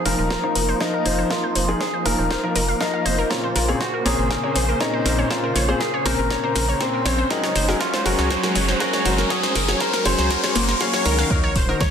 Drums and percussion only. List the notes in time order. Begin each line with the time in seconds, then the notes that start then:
0.06 open hi-hat
0.30 kick, snare
0.55 open hi-hat
0.81 kick, snare
1.06 open hi-hat
1.31 kick, snare
1.55 open hi-hat
1.81 kick, snare
2.06 open hi-hat
2.31 kick, snare
2.56 open hi-hat
2.81 kick, snare
3.06 open hi-hat
3.31 kick, snare
3.56 snare, open hi-hat
3.81 kick, snare
4.06 snare, open hi-hat
4.31 kick, snare
4.56 snare, open hi-hat
4.80 kick, snare
5.06 snare, open hi-hat
5.30 kick, snare
5.56 snare, open hi-hat
5.80 kick, snare
6.06 snare, open hi-hat
6.30 kick, snare
6.56 snare, open hi-hat
6.80 kick, snare
7.06 snare, open hi-hat
7.30 kick, snare
7.44 snare
7.56 snare, open hi-hat
7.69 snare
7.80 kick, snare
7.94 snare
8.06 snare, open hi-hat
8.19 snare
8.31 kick, snare
8.43 snare
8.55 snare, open hi-hat
8.68 snare
8.80 kick, snare
8.93 snare
9.06 snare, open hi-hat
9.18 snare
9.30 kick, snare
9.43 snare
9.56 kick, snare, open hi-hat
9.68 snare
9.80 kick, snare
9.94 snare
10.05 snare, open hi-hat
10.19 snare
10.31 kick, snare
10.44 snare
10.56 snare, open hi-hat
10.69 snare
10.81 kick, snare
10.94 snare
11.06 snare, open hi-hat
11.19 snare
11.31 kick
11.56 kick, open hi-hat
11.81 kick, snare